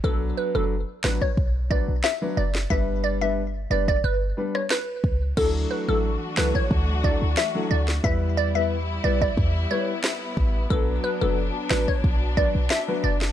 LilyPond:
<<
  \new Staff \with { instrumentName = "Synth pluck" } { \time 4/4 \key d \major \tempo 4 = 90 a'16 r16 b'16 a'16 r8 b'16 cis''16 r8 d''16 r16 e''16 r16 d''16 r16 | e''16 r16 d''16 e''16 r8 d''16 d''16 b'16 r8 cis''16 b'8. r16 | a'16 r16 b'16 a'16 r8 b'16 cis''16 r8 d''16 r16 e''16 r16 d''16 r16 | e''16 r16 d''16 e''16 r8 d''16 d''16 r8 cis''16 r4 r16 |
a'16 r16 b'16 a'16 r8 b'16 cis''16 r8 d''16 r16 e''16 r16 d''16 r16 | }
  \new Staff \with { instrumentName = "Grand piano" } { \time 4/4 \key d \major <fis b d' b'>8. <fis b d' b'>16 r8 <fis b d' b'>16 r8. <fis b d' b'>16 r8 <fis b d' b'>16 r8 | <g b d' b'>8. <g b d' b'>16 r8 <g b d' b'>16 r8. <g b d' b'>16 r4 r16 | <fis d' e' a'>8. <fis d' e' a'>16 r8 <fis d' e' a'>16 r8. <fis d' e' a'>16 r8 <fis d' e' a'>16 r8 | <g b e' b'>8. <g b e' b'>16 r8 <g b e' b'>16 r8. <g b e' b'>16 r4 r16 |
<fis b d' b'>8. <fis b d' b'>16 r8 <fis b d' b'>16 r8. <fis b d' b'>16 r8 <fis b d' b'>16 r8 | }
  \new Staff \with { instrumentName = "String section" } { \time 4/4 \key d \major << { r1 | r1 | <e fis a fis'>1 | <g e'>1 |
<fis d'>1 | } \\ { r1 | r1 | d'1 | b1~ |
b1 | } >> }
  \new Staff \with { instrumentName = "808-style bass" } { \clef bass \time 4/4 \key d \major b,,8 r16 fis,,8 r16 a,,16 r16 b,,8. b,,16 r8 fis,,8 | g,,4. fis,,8 g,,8 r4 cis,8 | d,8 r16 a,,8 r16 cis,16 r16 d,8. d,16 r8 d,8 | e,4. b,,8 e,8 r4 a,,8 |
b,,8 r16 fis,,8 r16 a,,16 r16 b,,8. b,,16 r8 fis,,8 | }
  \new DrumStaff \with { instrumentName = "Drums" } \drummode { \time 4/4 bd4 r8 <ss sn>16 bd16 bd8 bd8 <ss sn>8. sn16 | bd4 r8. bd16 r8. ss16 <ss sn>8 bd8 | <cymc bd>4 r8 <ss sn>16 bd16 bd8 bd8 <ss sn>8. sn16 | bd4 r8. bd16 bd4 <ss sn>8 bd8 |
bd4 r8 <ss sn>16 bd16 bd8 bd8 <ss sn>8. sn16 | }
>>